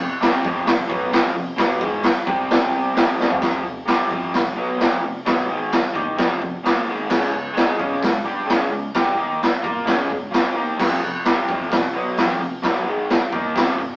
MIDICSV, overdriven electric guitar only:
0, 0, Header, 1, 2, 480
1, 0, Start_track
1, 0, Key_signature, -4, "minor"
1, 0, Tempo, 460123
1, 1656, Time_signature, 4, 2, 24, 8
1, 14563, End_track
2, 0, Start_track
2, 0, Title_t, "Overdriven electric guitar"
2, 0, Program_c, 0, 29
2, 0, Note_on_c, 0, 41, 75
2, 0, Note_on_c, 0, 48, 80
2, 171, Note_off_c, 0, 41, 0
2, 171, Note_off_c, 0, 48, 0
2, 221, Note_on_c, 0, 55, 98
2, 223, Note_on_c, 0, 48, 96
2, 243, Note_on_c, 0, 60, 96
2, 446, Note_off_c, 0, 48, 0
2, 453, Note_off_c, 0, 55, 0
2, 455, Note_on_c, 0, 41, 93
2, 459, Note_on_c, 0, 48, 97
2, 464, Note_off_c, 0, 60, 0
2, 471, Note_on_c, 0, 53, 93
2, 667, Note_off_c, 0, 48, 0
2, 668, Note_off_c, 0, 41, 0
2, 679, Note_on_c, 0, 48, 75
2, 681, Note_on_c, 0, 41, 64
2, 697, Note_off_c, 0, 53, 0
2, 880, Note_off_c, 0, 48, 0
2, 881, Note_off_c, 0, 41, 0
2, 912, Note_on_c, 0, 47, 90
2, 927, Note_on_c, 0, 54, 103
2, 941, Note_on_c, 0, 59, 105
2, 1146, Note_on_c, 0, 41, 85
2, 1157, Note_off_c, 0, 47, 0
2, 1163, Note_on_c, 0, 48, 102
2, 1165, Note_off_c, 0, 54, 0
2, 1171, Note_off_c, 0, 59, 0
2, 1173, Note_on_c, 0, 53, 113
2, 1394, Note_off_c, 0, 41, 0
2, 1394, Note_off_c, 0, 48, 0
2, 1406, Note_on_c, 0, 48, 72
2, 1407, Note_off_c, 0, 53, 0
2, 1410, Note_on_c, 0, 41, 73
2, 1603, Note_off_c, 0, 48, 0
2, 1604, Note_off_c, 0, 41, 0
2, 1632, Note_on_c, 0, 47, 110
2, 1640, Note_on_c, 0, 54, 114
2, 1656, Note_on_c, 0, 59, 110
2, 1876, Note_off_c, 0, 47, 0
2, 1880, Note_off_c, 0, 54, 0
2, 1887, Note_off_c, 0, 59, 0
2, 1890, Note_on_c, 0, 44, 100
2, 1902, Note_on_c, 0, 51, 104
2, 1909, Note_on_c, 0, 56, 102
2, 2124, Note_off_c, 0, 44, 0
2, 2130, Note_off_c, 0, 51, 0
2, 2134, Note_off_c, 0, 56, 0
2, 2363, Note_on_c, 0, 48, 84
2, 2369, Note_on_c, 0, 55, 95
2, 2380, Note_on_c, 0, 60, 92
2, 3067, Note_off_c, 0, 48, 0
2, 3071, Note_on_c, 0, 41, 105
2, 3079, Note_on_c, 0, 48, 110
2, 3082, Note_off_c, 0, 55, 0
2, 3087, Note_off_c, 0, 60, 0
2, 3096, Note_on_c, 0, 53, 105
2, 3541, Note_off_c, 0, 41, 0
2, 3550, Note_off_c, 0, 48, 0
2, 3554, Note_on_c, 0, 41, 99
2, 3562, Note_off_c, 0, 53, 0
2, 3562, Note_on_c, 0, 48, 103
2, 3575, Note_on_c, 0, 53, 110
2, 3781, Note_off_c, 0, 48, 0
2, 3784, Note_off_c, 0, 41, 0
2, 3793, Note_on_c, 0, 48, 77
2, 3796, Note_on_c, 0, 41, 69
2, 3805, Note_off_c, 0, 53, 0
2, 3993, Note_off_c, 0, 48, 0
2, 3995, Note_off_c, 0, 41, 0
2, 4021, Note_on_c, 0, 48, 91
2, 4037, Note_on_c, 0, 55, 89
2, 4047, Note_on_c, 0, 60, 91
2, 4261, Note_on_c, 0, 41, 99
2, 4263, Note_off_c, 0, 48, 0
2, 4274, Note_off_c, 0, 55, 0
2, 4276, Note_on_c, 0, 48, 86
2, 4278, Note_on_c, 0, 53, 85
2, 4281, Note_off_c, 0, 60, 0
2, 4504, Note_off_c, 0, 41, 0
2, 4505, Note_off_c, 0, 48, 0
2, 4516, Note_off_c, 0, 53, 0
2, 4517, Note_on_c, 0, 41, 56
2, 4518, Note_on_c, 0, 48, 66
2, 4715, Note_off_c, 0, 41, 0
2, 4715, Note_off_c, 0, 48, 0
2, 4755, Note_on_c, 0, 47, 90
2, 4766, Note_on_c, 0, 54, 97
2, 4773, Note_on_c, 0, 59, 90
2, 4979, Note_on_c, 0, 41, 88
2, 4985, Note_off_c, 0, 47, 0
2, 4989, Note_on_c, 0, 48, 97
2, 4995, Note_off_c, 0, 54, 0
2, 4999, Note_on_c, 0, 53, 97
2, 5004, Note_off_c, 0, 59, 0
2, 5227, Note_off_c, 0, 41, 0
2, 5232, Note_off_c, 0, 48, 0
2, 5237, Note_off_c, 0, 53, 0
2, 5251, Note_on_c, 0, 41, 61
2, 5259, Note_on_c, 0, 48, 71
2, 5442, Note_off_c, 0, 41, 0
2, 5446, Note_off_c, 0, 48, 0
2, 5475, Note_on_c, 0, 47, 108
2, 5485, Note_on_c, 0, 54, 110
2, 5487, Note_on_c, 0, 59, 110
2, 5707, Note_on_c, 0, 44, 89
2, 5715, Note_off_c, 0, 47, 0
2, 5720, Note_off_c, 0, 54, 0
2, 5721, Note_off_c, 0, 59, 0
2, 5722, Note_on_c, 0, 51, 100
2, 5730, Note_on_c, 0, 56, 97
2, 5951, Note_off_c, 0, 44, 0
2, 5959, Note_off_c, 0, 51, 0
2, 5963, Note_off_c, 0, 56, 0
2, 6196, Note_on_c, 0, 51, 94
2, 6207, Note_on_c, 0, 58, 92
2, 6216, Note_on_c, 0, 63, 96
2, 6436, Note_off_c, 0, 51, 0
2, 6437, Note_on_c, 0, 41, 95
2, 6442, Note_off_c, 0, 58, 0
2, 6442, Note_on_c, 0, 48, 90
2, 6446, Note_off_c, 0, 63, 0
2, 6451, Note_on_c, 0, 53, 91
2, 6667, Note_off_c, 0, 41, 0
2, 6679, Note_off_c, 0, 48, 0
2, 6680, Note_on_c, 0, 41, 59
2, 6683, Note_off_c, 0, 53, 0
2, 6692, Note_on_c, 0, 48, 67
2, 6877, Note_off_c, 0, 41, 0
2, 6884, Note_off_c, 0, 48, 0
2, 6927, Note_on_c, 0, 46, 108
2, 6936, Note_on_c, 0, 53, 89
2, 6942, Note_on_c, 0, 58, 113
2, 7162, Note_off_c, 0, 46, 0
2, 7166, Note_off_c, 0, 53, 0
2, 7168, Note_on_c, 0, 44, 88
2, 7169, Note_off_c, 0, 58, 0
2, 7179, Note_on_c, 0, 51, 95
2, 7192, Note_on_c, 0, 56, 105
2, 7381, Note_off_c, 0, 51, 0
2, 7385, Note_on_c, 0, 49, 111
2, 7387, Note_off_c, 0, 56, 0
2, 7400, Note_on_c, 0, 56, 121
2, 7402, Note_off_c, 0, 44, 0
2, 7405, Note_on_c, 0, 61, 114
2, 7624, Note_off_c, 0, 49, 0
2, 7628, Note_off_c, 0, 56, 0
2, 7637, Note_on_c, 0, 49, 73
2, 7640, Note_on_c, 0, 56, 78
2, 7641, Note_off_c, 0, 61, 0
2, 7836, Note_off_c, 0, 49, 0
2, 7838, Note_off_c, 0, 56, 0
2, 7859, Note_on_c, 0, 56, 89
2, 7875, Note_on_c, 0, 68, 93
2, 7881, Note_on_c, 0, 63, 86
2, 8097, Note_on_c, 0, 49, 93
2, 8109, Note_off_c, 0, 56, 0
2, 8117, Note_off_c, 0, 68, 0
2, 8119, Note_off_c, 0, 63, 0
2, 8121, Note_on_c, 0, 56, 91
2, 8125, Note_on_c, 0, 61, 102
2, 8348, Note_off_c, 0, 49, 0
2, 8350, Note_off_c, 0, 56, 0
2, 8360, Note_on_c, 0, 49, 59
2, 8361, Note_off_c, 0, 61, 0
2, 8363, Note_on_c, 0, 56, 72
2, 8559, Note_off_c, 0, 49, 0
2, 8560, Note_off_c, 0, 56, 0
2, 8601, Note_on_c, 0, 55, 80
2, 8610, Note_on_c, 0, 62, 103
2, 8618, Note_on_c, 0, 67, 96
2, 8829, Note_on_c, 0, 49, 96
2, 8834, Note_off_c, 0, 55, 0
2, 8838, Note_on_c, 0, 56, 95
2, 8845, Note_off_c, 0, 62, 0
2, 8849, Note_off_c, 0, 67, 0
2, 8851, Note_on_c, 0, 61, 107
2, 9074, Note_off_c, 0, 49, 0
2, 9079, Note_off_c, 0, 56, 0
2, 9085, Note_off_c, 0, 61, 0
2, 9085, Note_on_c, 0, 49, 62
2, 9090, Note_on_c, 0, 56, 80
2, 9282, Note_off_c, 0, 49, 0
2, 9284, Note_off_c, 0, 56, 0
2, 9331, Note_on_c, 0, 55, 114
2, 9332, Note_on_c, 0, 62, 109
2, 9346, Note_on_c, 0, 67, 118
2, 9549, Note_on_c, 0, 51, 93
2, 9563, Note_off_c, 0, 55, 0
2, 9566, Note_off_c, 0, 62, 0
2, 9568, Note_on_c, 0, 58, 107
2, 9573, Note_off_c, 0, 67, 0
2, 9581, Note_on_c, 0, 63, 117
2, 9795, Note_off_c, 0, 51, 0
2, 9804, Note_off_c, 0, 58, 0
2, 9811, Note_off_c, 0, 63, 0
2, 10040, Note_on_c, 0, 65, 89
2, 10041, Note_on_c, 0, 58, 80
2, 10047, Note_on_c, 0, 70, 88
2, 10271, Note_off_c, 0, 58, 0
2, 10275, Note_on_c, 0, 56, 85
2, 10279, Note_on_c, 0, 49, 82
2, 10281, Note_off_c, 0, 65, 0
2, 10285, Note_off_c, 0, 70, 0
2, 10291, Note_on_c, 0, 61, 93
2, 10519, Note_off_c, 0, 56, 0
2, 10521, Note_off_c, 0, 49, 0
2, 10527, Note_off_c, 0, 61, 0
2, 10539, Note_on_c, 0, 49, 61
2, 10544, Note_on_c, 0, 56, 75
2, 10730, Note_off_c, 0, 49, 0
2, 10733, Note_off_c, 0, 56, 0
2, 10758, Note_on_c, 0, 53, 92
2, 10772, Note_on_c, 0, 60, 100
2, 10784, Note_on_c, 0, 65, 96
2, 11001, Note_off_c, 0, 53, 0
2, 11008, Note_off_c, 0, 60, 0
2, 11008, Note_on_c, 0, 51, 85
2, 11014, Note_off_c, 0, 65, 0
2, 11025, Note_on_c, 0, 58, 93
2, 11037, Note_on_c, 0, 63, 102
2, 11246, Note_off_c, 0, 51, 0
2, 11251, Note_on_c, 0, 48, 107
2, 11254, Note_on_c, 0, 41, 110
2, 11255, Note_off_c, 0, 58, 0
2, 11261, Note_off_c, 0, 63, 0
2, 11270, Note_on_c, 0, 53, 112
2, 11488, Note_off_c, 0, 48, 0
2, 11490, Note_off_c, 0, 41, 0
2, 11497, Note_off_c, 0, 53, 0
2, 11502, Note_on_c, 0, 48, 82
2, 11505, Note_on_c, 0, 41, 63
2, 11693, Note_off_c, 0, 48, 0
2, 11694, Note_off_c, 0, 41, 0
2, 11740, Note_on_c, 0, 48, 95
2, 11748, Note_on_c, 0, 55, 96
2, 11757, Note_on_c, 0, 60, 89
2, 11973, Note_off_c, 0, 48, 0
2, 11977, Note_off_c, 0, 55, 0
2, 11981, Note_on_c, 0, 41, 91
2, 11982, Note_off_c, 0, 60, 0
2, 11997, Note_on_c, 0, 53, 101
2, 12000, Note_on_c, 0, 48, 88
2, 12194, Note_off_c, 0, 41, 0
2, 12194, Note_off_c, 0, 48, 0
2, 12206, Note_on_c, 0, 41, 58
2, 12206, Note_on_c, 0, 48, 66
2, 12222, Note_off_c, 0, 53, 0
2, 12406, Note_off_c, 0, 41, 0
2, 12406, Note_off_c, 0, 48, 0
2, 12445, Note_on_c, 0, 47, 93
2, 12455, Note_on_c, 0, 54, 95
2, 12468, Note_on_c, 0, 59, 101
2, 12687, Note_off_c, 0, 47, 0
2, 12692, Note_off_c, 0, 54, 0
2, 12698, Note_off_c, 0, 59, 0
2, 12701, Note_on_c, 0, 41, 110
2, 12713, Note_on_c, 0, 48, 96
2, 12723, Note_on_c, 0, 53, 113
2, 12923, Note_off_c, 0, 41, 0
2, 12936, Note_on_c, 0, 41, 67
2, 12938, Note_off_c, 0, 48, 0
2, 12946, Note_off_c, 0, 53, 0
2, 12951, Note_on_c, 0, 48, 70
2, 13132, Note_off_c, 0, 41, 0
2, 13139, Note_off_c, 0, 48, 0
2, 13166, Note_on_c, 0, 47, 112
2, 13180, Note_on_c, 0, 54, 112
2, 13189, Note_on_c, 0, 59, 118
2, 13406, Note_on_c, 0, 44, 101
2, 13408, Note_off_c, 0, 47, 0
2, 13415, Note_off_c, 0, 54, 0
2, 13416, Note_on_c, 0, 51, 112
2, 13420, Note_off_c, 0, 59, 0
2, 13434, Note_on_c, 0, 56, 99
2, 13648, Note_off_c, 0, 44, 0
2, 13653, Note_off_c, 0, 51, 0
2, 13662, Note_off_c, 0, 56, 0
2, 13894, Note_on_c, 0, 51, 99
2, 13910, Note_on_c, 0, 63, 91
2, 13911, Note_on_c, 0, 58, 102
2, 14133, Note_off_c, 0, 51, 0
2, 14135, Note_on_c, 0, 41, 89
2, 14141, Note_off_c, 0, 58, 0
2, 14141, Note_off_c, 0, 63, 0
2, 14142, Note_on_c, 0, 48, 84
2, 14151, Note_on_c, 0, 53, 99
2, 14356, Note_off_c, 0, 41, 0
2, 14366, Note_off_c, 0, 48, 0
2, 14369, Note_on_c, 0, 41, 68
2, 14379, Note_on_c, 0, 48, 72
2, 14382, Note_off_c, 0, 53, 0
2, 14563, Note_off_c, 0, 41, 0
2, 14563, Note_off_c, 0, 48, 0
2, 14563, End_track
0, 0, End_of_file